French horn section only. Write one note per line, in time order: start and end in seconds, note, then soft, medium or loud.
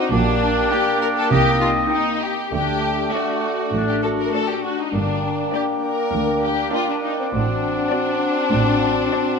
0.11 2.36 A#3 medium
0.11 1.31 G4 medium
1.31 2.36 D#4 medium
2.53 4.64 A3 soft
2.53 7.30 D4 soft
4.93 7.29 A#3 soft
7.33 9.39 C4 soft
7.33 9.39 F#4 medium